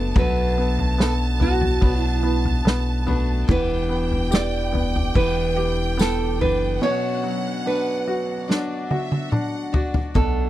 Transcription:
0.00 0.13 F#1 loud
0.00 0.15 A3 soft
0.00 0.58 B3 medium
0.00 0.16 D4 soft
0.00 0.15 F#4 medium
0.00 0.13 A4 medium
0.00 3.44 A5 loud
0.15 1.78 B1 loud
0.15 1.82 B2 medium
0.15 1.80 F#3 medium
0.15 3.45 F#3 medium
0.15 1.81 A3 medium
0.15 1.82 D4 medium
0.15 1.82 F#4 medium
0.15 kick loud
0.15 floor tom loud
0.19 1.02 B4 medium
0.58 0.97 B3 soft
0.79 floor tom medium
0.98 1.38 B3 medium
0.98 1.13 A4 medium
0.98 snare loud
1.40 1.80 B3 medium
1.40 1.99 F#4 medium
1.40 floor tom medium
1.61 floor tom medium
1.81 2.62 B1 loud
1.81 3.06 F#3 medium
1.81 3.07 A3 medium
1.81 2.22 B3 medium
1.81 3.07 D4 medium
1.81 3.05 F#4 medium
1.81 kick loud
1.81 floor tom medium
1.99 2.21 E4 medium
2.23 2.64 B3 medium
2.45 floor tom medium
2.65 3.44 B1 medium
2.65 3.05 B3 medium
2.65 snare loud
3.06 3.49 A3 soft
3.06 3.47 B3 medium
3.06 3.49 D4 soft
3.06 3.48 F#4 medium
3.06 floor tom medium
3.47 5.11 E1 loud
3.47 5.13 E3 medium
3.47 5.15 B3 medium
3.47 5.15 D4 medium
3.47 5.15 G4 medium
3.47 4.29 B4 loud
3.47 6.81 G5 loud
3.47 kick loud
3.47 floor tom loud
3.89 4.71 B3 soft
4.12 floor tom medium
4.31 5.55 G4 medium
4.31 5.16 D5 medium
4.31 snare loud
4.31 tambourine medium
4.72 5.96 B3 medium
4.72 floor tom medium
4.96 floor tom medium
5.14 6.42 E1 loud
5.14 6.40 E3 medium
5.14 6.39 E3 medium
5.14 6.41 B3 medium
5.14 6.41 D4 medium
5.14 6.38 G4 medium
5.14 5.95 B4 medium
5.14 kick loud
5.56 6.78 G4 medium
5.97 6.79 B3 medium
5.97 6.41 A4 medium
5.97 snare loud
5.97 tambourine medium
6.40 6.79 F#1 medium
6.40 6.81 E3 medium
6.40 6.83 B3 soft
6.40 6.82 D4 soft
6.40 6.82 G4 soft
6.40 6.83 B4 medium
6.40 floor tom medium
6.81 8.48 B2 medium
6.81 10.11 B2 medium
6.81 8.47 F#3 medium
6.81 8.50 C#4 medium
6.81 8.49 D4 medium
6.81 8.50 F#4 medium
6.81 7.62 C#5 loud
6.81 8.48 F#5 medium
7.24 8.86 F#3 medium
7.66 8.48 D4 medium
7.66 9.29 B4 medium
8.08 8.90 F#4 medium
8.48 10.15 F#3 medium
8.48 9.75 D4 medium
8.48 9.31 D4 medium
8.48 9.73 F#4 medium
8.48 8.90 D5 medium
8.48 snare medium
8.90 9.73 F#4 medium
8.90 9.32 E5 medium
8.90 high tom medium
9.12 high tom medium
9.32 10.13 D4 medium
9.32 9.74 F#5 medium
9.32 mid tom medium
9.73 10.16 D4 soft
9.73 10.15 F#4 soft
9.73 10.14 F#4 medium
9.73 10.16 D5 medium
9.73 floor tom loud
9.94 floor tom medium
10.14 10.49 B1 loud
10.14 10.49 B2 medium
10.14 10.49 F#3 medium
10.14 10.49 A3 medium
10.14 10.49 D4 medium
10.14 10.49 F#4 medium
10.14 10.49 A4 medium
10.14 kick loud
10.14 floor tom loud

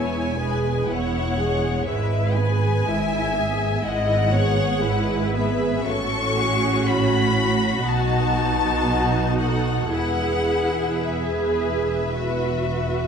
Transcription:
0.00 0.77 E1 soft
0.00 0.77 E2 soft
0.00 0.36 B3 soft
0.00 0.36 E4 soft
0.00 0.40 C#5 soft
0.00 0.89 G#5 soft
0.40 0.89 G#3 soft
0.40 0.89 G#4 soft
0.40 0.88 B4 soft
0.88 1.75 E1 soft
0.88 1.75 E2 soft
0.88 1.38 B3 soft
0.88 1.38 E4 soft
0.88 1.88 C#5 soft
0.88 1.87 F#5 soft
1.38 1.86 G#3 soft
1.38 1.87 G#4 soft
1.87 2.75 G#1 soft
1.87 2.75 G#2 soft
1.87 2.33 G#3 soft
1.87 2.33 E4 soft
1.87 2.87 B4 soft
1.87 2.36 E5 soft
2.35 2.86 B3 soft
2.35 2.86 G#4 soft
2.35 3.83 G#5 medium
2.86 3.73 G#1 soft
2.86 3.72 G#2 soft
2.86 3.36 G#3 soft
2.86 3.36 E4 soft
2.86 3.84 E5 soft
3.34 3.83 B3 soft
3.34 3.83 G#4 soft
3.83 4.71 G#1 soft
3.83 4.70 G#2 soft
3.83 4.29 G#3 soft
3.83 4.29 E4 soft
3.83 4.33 D#5 soft
3.83 5.35 F#5 medium
4.32 4.82 B3 soft
4.32 4.82 G#4 soft
4.32 4.82 C#5 soft
4.82 5.75 G#1 soft
4.82 5.74 G#2 soft
4.82 5.34 G#3 soft
4.82 5.34 E4 soft
4.82 5.87 B4 soft
5.35 5.87 B3 soft
5.35 5.87 G#4 soft
5.35 5.86 E5 medium
5.87 7.81 A1 soft
5.87 7.81 A2 soft
5.87 7.81 C#4 soft
5.87 7.81 F#4 soft
5.87 6.36 A4 soft
5.87 6.86 C#6 medium
6.36 6.85 G#4 soft
6.86 8.85 F#4 soft
6.86 7.86 B5 medium
7.85 9.92 B1 soft
7.85 9.92 B2 soft
7.85 9.88 D#4 soft
7.85 9.88 F#4 soft
7.85 9.39 A5 medium
8.87 9.37 F#4 soft
9.37 9.91 A4 soft
9.37 9.91 F#5 soft
9.92 13.07 E1 soft
9.92 13.07 E2 soft
9.92 11.01 E4 soft
9.92 11.01 G#4 soft
9.92 13.07 B4 soft
9.92 11.01 F#5 medium
11.02 12.11 G#4 soft
11.02 13.07 E5 soft
12.16 13.07 F#4 soft

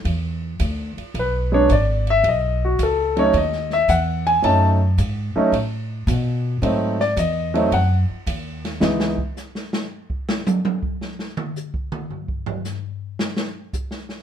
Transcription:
0.05 0.58 E2 medium
0.05 kick soft
0.05 ride medium
0.60 0.95 D2 medium
0.60 kick soft
0.60 hi-hat pedal soft
0.60 ride medium
0.97 muted upright bass stroke soft
0.97 ride soft
1.14 1.68 B1 medium
1.14 kick soft
1.14 ride medium
1.19 1.54 B4 medium
1.52 1.68 F#3 medium
1.52 1.68 G#3 medium
1.52 1.68 B3 medium
1.52 1.68 D4 medium
1.52 1.70 C#5 medium
1.69 2.22 G#1 medium
1.69 2.07 D5 medium
1.69 hi-hat pedal soft
1.69 ride medium
2.07 2.25 E5 loud
2.07 ride soft
2.24 2.77 B1 medium
2.24 kick soft
2.24 ride medium
2.29 2.63 D#5 medium
2.65 2.80 F#4 medium
2.79 3.32 C#2 medium
2.79 kick soft
2.79 hi-hat pedal medium
2.79 ride medium
2.83 3.18 A4 medium
3.17 3.32 F#3 medium
3.17 3.33 A3 medium
3.17 3.33 C#4 medium
3.17 3.33 D#4 medium
3.17 3.35 C#5 loud
3.17 ride soft
3.33 3.87 D#2 medium
3.33 3.72 D#5 medium
3.33 ride medium
3.52 snare soft
3.70 3.89 E5 medium
3.70 snare soft
3.88 4.42 E2 medium
3.88 4.26 F#5 medium
3.88 kick soft
3.88 hi-hat pedal medium
3.88 ride medium
4.27 4.43 G#5 medium
4.27 ride soft
4.42 4.96 F#2 medium
4.42 4.77 F#3 medium
4.42 4.77 A3 medium
4.42 4.77 C#4 medium
4.42 4.78 D#4 medium
4.42 4.67 A5 medium
4.42 kick soft
4.42 ride medium
4.98 5.33 G#2 loud
4.98 kick soft
4.98 hi-hat pedal medium
4.98 ride medium
5.36 5.51 F#3 medium
5.36 5.51 A3 medium
5.36 5.52 C#4 medium
5.36 5.52 D#4 medium
5.36 muted upright bass stroke soft
5.52 6.06 A2 medium
5.52 kick soft
5.52 ride medium
6.07 6.60 B2 loud
6.07 hi-hat pedal medium
6.07 ride medium
6.62 7.15 G#2 medium
6.62 6.96 F#3 medium
6.62 6.96 A3 medium
6.62 6.96 C4 medium
6.62 6.97 D#4 medium
6.62 kick soft
6.62 ride medium
7.00 7.17 D5 medium
7.00 snare soft
7.17 7.70 E2 medium
7.17 7.69 D#5 medium
7.17 kick soft
7.17 hi-hat pedal medium
7.17 ride medium
7.54 7.70 F#3 medium
7.54 7.70 A3 medium
7.54 7.70 C4 medium
7.54 7.71 D#4 medium
7.54 ride soft
7.72 8.07 F#2 medium
7.72 7.96 F#5 medium
7.72 kick soft
7.72 ride medium
8.09 muted upright bass stroke soft
8.27 8.80 D#2 medium
8.27 kick soft
8.27 hi-hat pedal medium
8.27 ride medium
8.65 snare medium
8.65 ride soft
8.80 9.18 C#2 medium
8.80 9.15 E3 medium
8.80 9.15 G#3 medium
8.80 9.15 B3 medium
8.80 9.16 D#4 medium
8.80 snare loud
9.00 snare medium
9.18 kick medium
9.37 snare soft
9.37 hi-hat pedal medium
9.55 snare medium
9.73 snare loud
10.10 kick medium
10.29 snare medium
10.47 hi-hat pedal medium
10.47 high tom loud
10.65 high tom medium
10.83 kick medium
11.01 snare soft
11.19 snare soft
11.37 mid tom medium
11.56 hi-hat pedal medium
11.74 kick medium
11.92 mid tom medium
12.11 floor tom soft
12.28 kick medium
12.46 floor tom medium
12.65 snare soft
12.65 hi-hat pedal medium
13.19 snare loud
13.37 snare medium
13.73 kick medium
13.73 hi-hat pedal medium
13.91 snare soft
14.09 snare soft

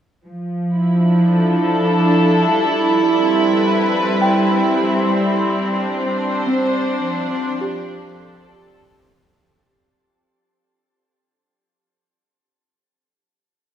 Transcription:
0.25 2.51 F3 medium
0.74 5.67 E4 medium
0.97 3.41 D4 medium
1.24 3.41 A4 medium
2.50 7.04 G3 medium
3.20 9.30 C4 medium
3.50 4.76 B4 medium
4.22 9.27 G5 medium
5.79 9.30 D4 medium
5.79 7.94 C5 medium
6.47 11.53 C4 medium
7.03 9.30 F3 medium
7.61 8.97 G4 medium
8.06 9.30 A4 medium

